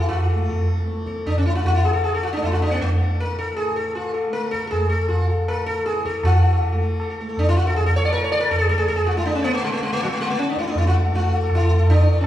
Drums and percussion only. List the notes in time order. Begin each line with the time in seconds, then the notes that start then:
0.09 tabla na, tabla ge
0.49 tabla tin, tabla ge
0.68 tabla na
0.78 tabla ke
0.88 tabla te
0.97 tabla te
1.06 tabla ke
1.16 tabla te
1.26 tabla na, tabla ge
1.65 tabla tin, tabla ge
1.84 tabla na
1.94 tabla ke
2.04 tabla na
2.42 tabla na, tabla ge
2.80 tabla tin, tabla ge
3.00 tabla na
3.19 tabla tin
3.57 tabla na
3.95 tabla tin
4.15 tabla na
4.33 tabla te
4.43 tabla te
4.53 tabla ke
4.63 tabla te
4.72 tabla na, tabla ge
5.10 tabla tin, tabla ge
5.30 tabla na
5.48 tabla na
5.86 tabla te
5.96 tabla te
6.05 tabla ke
6.15 tabla te
6.23 tabla na, tabla ge
6.61 tabla tin, tabla ge
7.00 tabla na
7.37 tabla na, tabla ge
7.57 tabla te
7.75 tabla tin, tabla ge
8.13 tabla na
8.51 tabla na, tabla ge
8.70 tabla te
8.89 tabla tin, tabla ge
9.07 tabla na
9.26 tabla tin
9.45 tabla na
9.64 tabla na
10.01 tabla tin
10.20 tabla na
10.38 tabla te
10.47 tabla te
10.56 tabla ke
10.65 tabla te
10.75 tabla na, tabla ge
11.12 tabla tin, tabla ge
11.50 tabla na, tabla ge
11.68 tabla ge
11.87 tabla na, tabla ge
12.06 tabla te